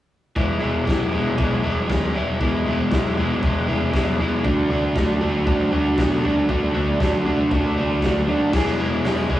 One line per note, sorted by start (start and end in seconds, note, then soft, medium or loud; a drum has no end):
0.36 0.83 E1 medium
0.36 0.59 E3 medium
0.36 0.60 G#3 medium
0.36 0.60 B3 medium
0.36 0.61 E4 medium
0.36 kick loud
0.36 floor tom medium
0.59 0.84 E3 medium
0.59 0.86 G#3 medium
0.59 0.86 B3 medium
0.59 0.87 E4 medium
0.59 floor tom soft
0.85 1.11 E1 medium
0.85 1.11 E3 medium
0.85 1.12 G#3 medium
0.85 1.13 B3 medium
0.85 1.14 E4 medium
0.85 kick loud
0.85 snare loud
0.85 floor tom medium
1.12 1.37 E1 medium
1.12 1.36 E3 medium
1.12 1.38 G#3 medium
1.12 1.38 B3 medium
1.12 1.38 E4 medium
1.12 floor tom medium
1.38 1.62 B1 medium
1.38 1.62 E3 medium
1.38 1.63 G#3 medium
1.38 1.63 B3 medium
1.38 1.64 E4 medium
1.38 kick loud
1.38 floor tom medium
1.64 1.88 E1 medium
1.64 1.87 E3 medium
1.64 1.88 G#3 medium
1.64 1.89 B3 medium
1.64 1.90 E4 medium
1.64 floor tom medium
1.89 2.13 D2 medium
1.89 2.13 E3 medium
1.89 2.13 G#3 medium
1.89 2.14 B3 medium
1.89 2.15 E4 medium
1.89 kick loud
1.89 snare loud
1.89 floor tom medium
2.14 2.39 E1 medium
2.14 2.38 E3 medium
2.14 2.39 G#3 medium
2.14 2.40 B3 medium
2.14 2.40 E4 loud
2.14 floor tom medium
2.40 2.65 E1 medium
2.40 2.65 E3 medium
2.40 2.65 G#3 medium
2.40 2.66 B3 medium
2.40 2.66 E4 medium
2.40 kick loud
2.40 floor tom medium
2.66 2.90 E1 medium
2.66 2.90 E3 medium
2.66 2.92 G#3 medium
2.66 2.92 B3 medium
2.66 2.92 E4 medium
2.66 floor tom medium
2.91 3.15 E1 medium
2.91 3.16 E3 medium
2.91 3.16 G#3 medium
2.91 3.18 B3 medium
2.91 3.18 E4 medium
2.91 kick loud
2.91 snare loud
2.91 floor tom medium
3.17 3.41 E1 medium
3.17 3.41 E3 medium
3.17 3.42 G#3 medium
3.17 3.43 B3 medium
3.17 3.43 E4 medium
3.17 floor tom medium
3.43 3.90 E1 medium
3.43 3.67 E3 medium
3.43 3.67 G#3 medium
3.43 3.68 B3 medium
3.43 3.68 E4 medium
3.43 kick loud
3.43 floor tom medium
3.68 3.91 E3 medium
3.68 3.92 G#3 medium
3.68 3.92 B3 medium
3.68 3.94 E4 medium
3.68 floor tom medium
3.92 4.18 E1 medium
3.92 4.18 E3 medium
3.92 4.19 G#3 medium
3.92 4.20 B3 medium
3.92 4.20 E4 medium
3.92 kick loud
3.92 snare loud
3.92 floor tom medium
4.19 4.43 E2 medium
4.19 4.43 E3 medium
4.19 4.44 G#3 medium
4.19 4.44 B3 medium
4.19 4.44 E4 medium
4.19 floor tom medium
4.44 4.92 D2 medium
4.44 4.69 D3 medium
4.44 4.70 A3 medium
4.44 4.71 D4 medium
4.44 4.71 F#4 medium
4.44 kick loud
4.44 floor tom medium
4.70 4.96 D3 medium
4.70 4.96 A3 medium
4.70 4.97 D4 loud
4.70 4.98 F#4 loud
4.70 floor tom medium
4.96 5.20 D2 medium
4.96 5.21 D3 medium
4.96 5.21 A3 medium
4.96 5.22 D4 medium
4.96 5.23 F#4 medium
4.96 kick loud
4.96 snare loud
4.96 floor tom medium
5.21 5.45 D2 medium
5.21 5.45 D3 medium
5.21 5.46 A3 medium
5.21 5.46 D4 medium
5.21 5.47 F#4 medium
5.21 floor tom medium
5.46 5.71 A1 medium
5.46 5.71 D3 medium
5.46 5.72 A3 loud
5.46 5.72 D4 loud
5.46 5.73 F#4 loud
5.46 kick loud
5.46 floor tom medium
5.72 5.97 D2 medium
5.72 5.97 D3 medium
5.72 5.97 A3 medium
5.72 5.97 D4 medium
5.72 5.98 F#4 medium
5.72 floor tom medium
5.98 6.22 B2 medium
5.98 6.22 D3 medium
5.98 6.23 A3 medium
5.98 6.24 D4 medium
5.98 6.24 F#4 medium
5.98 kick loud
5.98 snare loud
5.98 floor tom medium
6.23 6.48 D2 medium
6.23 6.47 D3 medium
6.23 6.48 A3 medium
6.23 6.49 D4 medium
6.23 6.49 F#4 medium
6.23 floor tom medium
6.48 6.73 D2 medium
6.48 6.72 D3 medium
6.48 6.73 A3 medium
6.48 6.73 D4 loud
6.48 6.73 F#4 medium
6.48 kick loud
6.48 floor tom medium
6.73 6.99 D2 medium
6.73 6.98 D3 medium
6.73 6.99 A3 medium
6.73 7.00 D4 medium
6.73 7.00 F#4 medium
6.73 floor tom medium
7.00 7.24 D2 medium
7.00 7.24 D3 medium
7.00 7.24 A3 medium
7.00 7.25 D4 medium
7.00 7.26 F#4 medium
7.00 kick loud
7.00 snare loud
7.00 floor tom medium
7.25 7.50 D2 medium
7.25 7.50 D3 medium
7.25 7.51 A3 medium
7.25 7.51 D4 medium
7.25 7.52 F#4 medium
7.25 floor tom medium
7.51 7.99 D2 medium
7.51 7.76 D3 medium
7.51 7.77 A3 loud
7.51 7.77 D4 loud
7.51 7.77 F#4 loud
7.51 kick loud
7.51 floor tom medium
7.77 8.02 D3 medium
7.77 8.03 A3 medium
7.77 8.03 D4 medium
7.77 8.04 F#4 loud
7.77 floor tom medium
8.02 8.26 D2 medium
8.02 8.27 D3 medium
8.02 8.28 A3 medium
8.02 8.28 D4 medium
8.02 8.29 F#4 medium
8.02 kick loud
8.02 snare loud
8.02 floor tom medium
8.28 8.51 D#2 medium
8.28 8.52 D3 medium
8.28 8.53 A3 medium
8.28 8.53 D4 medium
8.28 8.53 F#4 medium
8.28 floor tom medium
8.52 8.73 E1 medium
8.52 9.32 E3 medium
8.52 9.04 G#3 medium
8.52 8.81 B3 medium
8.52 8.80 E4 medium
8.52 8.78 G#4 loud
8.52 kick loud
8.52 snare medium
8.52 crash loud
8.78 8.99 E1 medium
8.78 9.06 B3 medium
8.78 9.06 E4 medium
8.78 9.07 G#4 medium
9.04 9.24 E1 medium
9.04 9.32 G#3 medium
9.04 9.31 B3 medium
9.04 9.30 E4 medium
9.04 9.29 G#4 medium
9.04 snare loud
9.04 open hi-hat medium
9.29 9.40 E1 medium
9.29 9.40 E3 medium
9.29 9.40 G#3 medium
9.29 9.40 B3 medium
9.29 9.40 E4 medium
9.29 9.40 G#4 medium
9.29 kick medium